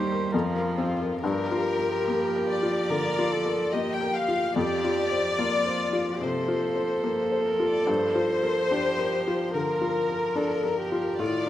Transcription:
Already playing: felt piano D#2 D#4 A#4, cello G3, violin section G4, viola C5
0.12 felt piano A#4
0.32 felt piano F2, cello F3, violin section F4, viola A#4
0.55 felt piano A#4
0.78 felt piano C4
1.02 felt piano A#4
1.21 felt piano G2, cello F3, viola G4, violin section A#4
1.51 felt piano F4
1.79 felt piano A#4
2.08 felt piano A#3
2.36 felt piano A#4
2.48 violin section D5
2.63 felt piano F4
2.90 felt piano D3, viola A#4
3.19 felt piano F4
3.31 viola A4
3.46 felt piano A#4
3.72 felt piano A#3, viola G4, violin section D#5
3.93 violin section G5
4.01 felt piano A#4
4.14 violin section F5
4.28 felt piano F4
4.55 felt piano F2, cello F3, viola G4, violin section D5
4.85 felt piano F4
5.11 felt piano C5
5.39 felt piano A#3, viola F4
5.66 felt piano C5
5.93 felt piano F4
6.21 felt piano C3, viola A4, violin section C5
6.48 felt piano F4
6.76 felt piano C5
7.04 felt piano A#3
7.32 felt piano C5
7.46 violin section A#4
7.60 felt piano F4
7.69 violin section D5
7.87 felt piano G2, cello F3, violin section C5
8.15 felt piano F4
8.43 felt piano A#4
8.71 felt piano D4, viola G4
8.98 felt piano A#4
9.28 felt piano F4
9.54 felt piano D3, violin section A#4, viola A#4
9.81 felt piano F4
10.09 felt piano A#4
10.35 felt piano D4, viola A4
10.63 felt piano A#4
10.78 viola G4
10.92 felt piano F4
11.19 felt piano A2, cello D#3, viola F4, violin section D5

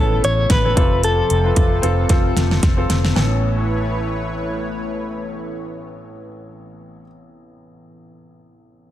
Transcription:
Already playing: fingered electric bass A1, upright piano A2 E3 B3 C#4 E4 A4, analog synth pad C#3 A3 B3, clean electric guitar A4
0.24 fingered electric bass A1, clean electric guitar C#5, closed hi-hat
0.50 fingered electric bass A1, clean electric guitar B4, kick, snare, closed hi-hat
0.64 upright piano B3 C#4 A4
0.75 fingered electric bass F1, upright piano C3 C4 F4 A4, analog synth pad F3 C4 F4 A4, kick, closed hi-hat
1.03 clean electric guitar A4, closed hi-hat
1.30 fingered electric bass F1, closed hi-hat
1.44 upright piano C4 F4 B4
1.56 fingered electric bass F1, kick, closed hi-hat
1.82 fingered electric bass F1, upright piano C4 F4 A4, closed hi-hat
2.09 fingered electric bass F1, upright piano C4 F4 A4, kick, snare, closed hi-hat
2.36 fingered electric bass F1, snare, closed hi-hat
2.51 snare
2.63 fingered electric bass F1, kick, snare, closed hi-hat
2.77 upright piano C4 F4 A4
2.90 fingered electric bass F1, snare, closed hi-hat
3.05 snare
3.13 upright piano A1 B3 C#4, fingered electric bass A1, analog synth pad A3 E4 B4 C#5, snare
3.19 upright piano A4

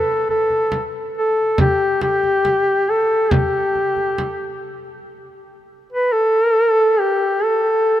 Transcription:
Already playing: duduk A4
0.29 duduk A4, frame drum
0.50 frame drum
0.72 frame drum
1.17 duduk A4
1.58 duduk G4, frame drum
2.01 duduk G4, frame drum
2.23 frame drum
2.45 frame drum
2.90 duduk A4
3.31 duduk G4, frame drum
3.75 frame drum
3.96 frame drum
4.18 frame drum
5.92 duduk B4
6.13 duduk A4
7.00 duduk G4
7.43 duduk A4

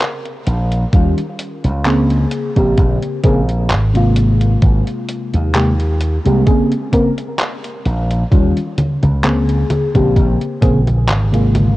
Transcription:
0.00 clap, closed hi-hat
0.26 closed hi-hat
0.47 slap bass A#1, closed hi-hat
0.72 closed hi-hat
0.93 slap bass D#2, fm electric piano D#3 G3 C#4 F4, kick, closed hi-hat
1.18 closed hi-hat
1.39 closed hi-hat
1.64 slap bass C#2, closed hi-hat
1.85 fm electric piano C#3 A#3 C4 G#4, clap, closed hi-hat
2.10 closed hi-hat
2.31 closed hi-hat
2.56 slap bass A#1, fm electric piano C#3 A#3 C4 G4, kick, closed hi-hat
2.77 slap bass A#1, kick, closed hi-hat
3.02 closed hi-hat
3.23 slap bass A#1, fm electric piano C#3 A#3 C4 G#4, kick, closed hi-hat
3.49 closed hi-hat
3.70 slap bass G#1, clap, closed hi-hat
3.94 fm electric piano C3 G#3 A#3 F4, closed hi-hat
4.16 closed hi-hat
4.41 closed hi-hat
4.62 slap bass G#1, kick, closed hi-hat
4.87 closed hi-hat
5.09 closed hi-hat
5.33 slap bass D#2, closed hi-hat
5.54 fm electric piano C3 G#3 A#3 G4, clap, closed hi-hat
5.80 closed hi-hat
6.01 closed hi-hat
6.25 slap bass C2, fm electric piano C3 G#3 A#3 G4, closed hi-hat
6.46 fm electric piano C#3 A#3 C4 G#4, kick, closed hi-hat
6.72 closed hi-hat
6.92 fm electric piano C#3 A#3 C4 A#4, kick, closed hi-hat
7.18 closed hi-hat
7.39 clap, closed hi-hat
7.64 closed hi-hat
7.86 slap bass A#1, closed hi-hat
8.11 closed hi-hat
8.31 slap bass D#2, fm electric piano D#3 G3 C#4 F4, kick, closed hi-hat, high conga
8.57 closed hi-hat
8.78 closed hi-hat, high conga
9.03 slap bass C#2, closed hi-hat, high conga
9.23 fm electric piano C#3 A#3 C4 G#4, clap, closed hi-hat, high conga
9.49 closed hi-hat
9.70 closed hi-hat, high conga
9.94 slap bass A#1, fm electric piano C#3 A#3 C4 G4, kick, closed hi-hat, high conga
10.16 slap bass A#1, kick, closed hi-hat, high conga
10.41 closed hi-hat
10.61 slap bass A#1, fm electric piano C#3 A#3 C4 G#4, kick, closed hi-hat, high conga
10.87 closed hi-hat, high conga
11.09 slap bass G#1, clap, closed hi-hat, high conga
11.32 fm electric piano C3 G#3 A#3 F4, closed hi-hat
11.55 closed hi-hat, high conga

